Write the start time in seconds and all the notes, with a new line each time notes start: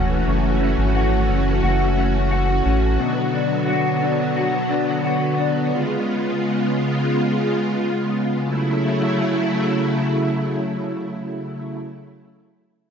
Already playing: E1 F#2 E3 A3 C#4 F#4
0.27 F#1 F#2
0.61 C#4
0.78 G#1
0.95 F#4
1.29 F#1 C#4
1.63 F#1 F#4
1.97 C#4
2.31 F#4
2.66 A1 C#4
2.99 B2 D3 F#3 B3
3.34 D4
3.68 F#4
4.02 D4
4.36 F#4
4.70 D4
5.04 F#4
5.38 D4
5.72 C#3 G#3 F4
8.45 C#3 F#3 A3 E4